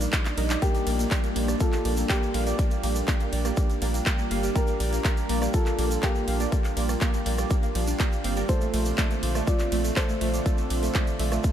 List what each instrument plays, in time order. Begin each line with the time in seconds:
Already playing: analog synth pad G3 A#3 D4 D#4
0.01 synth pluck A#3, closed hi-hat, shaker
0.13 synth stab G3 D#4 D5, synth pluck F4, kick, clap, closed hi-hat, shaker
0.25 synth pluck A#3, clap, closed hi-hat, shaker
0.38 analog synth bass A#1, synth stab G3 D#4 D#5, synth pluck A#4, open hi-hat, ride
0.50 synth stab G3 D#4 D5, clap, closed hi-hat, shaker
0.62 synth stab A#3 G4 D5, grand piano A#3 G4, synth pluck A#3, analog synth pad F4, kick, closed hi-hat, shaker
0.75 closed hi-hat, shaker
0.87 analog synth bass A#1, synth stab A#3 G4 D5, synth pluck A#3, open hi-hat, ride
0.99 synth pluck A#3, closed hi-hat, shaker
1.11 synth stab A#3 G4 D5, kick, clap, closed hi-hat, shaker
1.24 synth pluck A#3, closed hi-hat, shaker
1.36 analog synth bass A#1, synth stab A#3 G4 D5, synth pluck A#3, open hi-hat, ride
1.48 synth stab A#3 G4 D5, cross-stick, closed hi-hat, shaker
1.60 synth pluck A#3, grand piano F4 A4, synth stab G4, kick, closed hi-hat, shaker
1.73 synth pluck A#3, clap, closed hi-hat, shaker
1.85 analog synth bass A#1, synth stab A#3 G4 D5, open hi-hat, ride
1.97 synth pluck A#3, closed hi-hat, shaker
2.09 synth stab A#3 G4 D5, synth pluck A#3, grand piano A#3 G4, kick, clap, closed hi-hat, shaker
2.23 shaker
2.34 analog synth bass A#1, synth stab A#3 G4 F5, synth pluck A#3, open hi-hat, ride
2.47 synth stab A#3 G4 D5, synth pluck A#3, closed hi-hat, shaker
2.59 synth stab G4 D5, kick, closed hi-hat, shaker
2.71 synth pluck A#3, closed hi-hat, shaker
2.83 analog synth bass A#1, synth pluck A#3, synth stab A#3 G4 D5, open hi-hat, ride
2.95 closed hi-hat, shaker
3.08 synth pluck A#3, synth stab A#3 G4 D5, kick, clap, closed hi-hat, shaker
3.20 synth pluck A#3, closed hi-hat, shaker
3.33 analog synth bass A#1, synth stab A#3 G4 D5, open hi-hat, ride
3.45 synth stab A#3 G4 D5, synth pluck A#3, cross-stick, closed hi-hat, shaker
3.57 synth pluck A#3, synth stab A#3 G4 D5, kick, closed hi-hat, shaker
3.70 closed hi-hat, shaker
3.82 analog synth bass A#1, synth pluck A#3, synth stab A#3 G4 D5, open hi-hat, ride
3.94 synth pluck A#3, closed hi-hat, shaker
4.06 synth stab A#3 G4 D5, kick, clap, closed hi-hat, shaker
4.18 synth pluck A#3, shaker
4.31 analog synth bass G1, synth stab A#3 G4 F5, synth pluck A#3, open hi-hat, ride
4.43 synth stab A#3 G4 D5, closed hi-hat, shaker
4.56 synth stab A#3 G4 D5, synth pluck A#3, grand piano G4 A#4, kick, closed hi-hat, shaker
4.67 synth pluck A#3, closed hi-hat, shaker
4.80 analog synth bass A#1, synth stab A#3 G4 D5, open hi-hat, ride
4.93 synth pluck A#3, closed hi-hat, shaker
5.04 synth stab A#3 G4 D5, synth pluck A#3, kick, clap, closed hi-hat, shaker
5.17 closed hi-hat, shaker
5.29 analog synth bass A#1, synth pluck A#3, synth stab A#3 G4 D5, open hi-hat, ride
5.42 synth pluck A#3, synth stab A#3 G4 D5, cross-stick, closed hi-hat, shaker
5.53 synth stab A#3 G4, grand piano F4 A4, kick, closed hi-hat, shaker
5.66 synth pluck A#3, clap, closed hi-hat, shaker
5.78 analog synth bass A#1, synth stab A#3 G4 D5, synth pluck A#3, open hi-hat, ride
5.91 closed hi-hat, shaker
6.03 synth pluck A#3, synth stab A#3 G4 D5, grand piano A#3 G4, kick, clap, closed hi-hat, shaker
6.15 synth pluck A#3, shaker
6.28 analog synth bass A#1, synth stab A#3 G4 F5, open hi-hat, ride
6.40 synth stab A#3 G4 D5, synth pluck A#3, closed hi-hat, shaker
6.52 synth stab A#3 G4 D5, synth pluck A#3, kick, closed hi-hat, shaker
6.64 clap, closed hi-hat, shaker
6.77 analog synth bass A#1, synth pluck A#3, synth stab A#3 G4 D5, open hi-hat, ride
6.89 synth pluck A#3, cross-stick, closed hi-hat, shaker
7.01 synth stab A#3 G4 D5, kick, clap, closed hi-hat, shaker
7.14 synth pluck A#3, closed hi-hat, shaker
7.26 analog synth bass A#1, synth stab A#3 G4 D5, synth pluck A#3, open hi-hat, ride
7.38 synth stab A#3 G4 D5, cross-stick, closed hi-hat, shaker
7.50 synth stab A#3 G4 D5, synth pluck A#3, kick, closed hi-hat, shaker
7.63 synth pluck A#3, closed hi-hat, shaker
7.75 analog synth bass A#1, synth pluck F3, synth stab A#3 G4 D5, open hi-hat, ride
7.87 synth pluck D4, closed hi-hat, shaker
7.99 synth stab A#3 G4 D5, synth pluck A#4, kick, clap, closed hi-hat, shaker
8.12 shaker
8.24 analog synth bass G1, synth stab A#3 G4 F5, synth pluck C4, open hi-hat, ride
8.37 synth stab A#3 G4 D5, synth pluck A#4, closed hi-hat, shaker
8.49 analog synth pad D3 A3 C4, synth stab A3 F4, grand piano A4 C5, kick, closed hi-hat, shaker
8.61 synth pluck A3, closed hi-hat, shaker
8.74 analog synth bass A#1, synth pluck A3, synth stab A3 F4 D5, open hi-hat, ride
8.85 closed hi-hat, shaker
8.98 synth stab A3 F4 D5, synth pluck A3, kick, clap, closed hi-hat, shaker
9.11 synth pluck A3, closed hi-hat, shaker
9.23 analog synth bass A#1, synth stab A3 F4 D5, open hi-hat, ride
9.35 synth stab A3 F4 D5, synth pluck A3, cross-stick, closed hi-hat, shaker
9.47 synth stab A3, synth pluck A3, grand piano F4 D5, kick, closed hi-hat, shaker
9.59 clap, closed hi-hat, shaker
9.72 analog synth bass A#1, synth stab A3 F4 D5, synth pluck A3, open hi-hat, ride
9.84 synth pluck A3, closed hi-hat, shaker
9.96 synth stab A3 F4 D5, grand piano A4 C5, kick, clap, closed hi-hat, shaker
10.09 synth pluck A3, shaker
10.21 analog synth bass A#1, synth stab A3 F4 F5, synth pluck A3, open hi-hat, ride
10.34 synth stab A3 F4 D5, closed hi-hat, shaker
10.46 synth stab A3 F4 D5, synth pluck A3, kick, closed hi-hat, shaker
10.58 synth pluck A3, closed hi-hat, shaker
10.70 analog synth bass A#1, synth stab A3 F4 D5, open hi-hat, ride
10.83 synth pluck A3, closed hi-hat, shaker
10.94 synth stab A3 F4 D5, synth pluck A3, kick, clap, closed hi-hat, shaker
11.07 closed hi-hat, shaker
11.19 analog synth bass A#1, synth stab A3 F4 D5, synth pluck A3, open hi-hat, ride
11.32 synth stab A3 F4 D5, synth pluck A3, cross-stick, closed hi-hat, shaker
11.44 kick, closed hi-hat, shaker